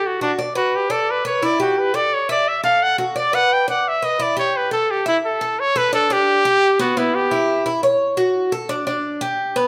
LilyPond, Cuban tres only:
\new Staff \with { instrumentName = "Cuban tres" } { \time 4/4 \key d \major \tempo 4 = 173 a'8 fis'8 d''8 b'4 d''4 b'8 | e'8 g'4 a'4 e''4 a'8~ | a'8 fis'8 d''8 b'4 d''4 b'8 | e'8 g'4 a'4 e''4 a'8 |
r8 a'8 d'8 d'4 g'4 b8 | b4 e'4 e'8 cis''4 fis'8~ | fis'8 a'8 d'8 d'4 g'4 b8 | }